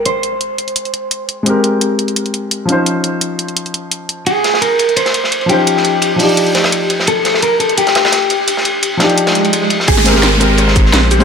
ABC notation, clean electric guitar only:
X:1
M:4/4
L:1/8
Q:"Swing 16ths" 1/4=171
K:Ab
V:1 name="Clean electric guitar"
c6- c z | z8 | z8 | A2 B2 c3 G- |
G6- G z | =A2 B A G4- | G6 z2 | A2 B B c3 G |]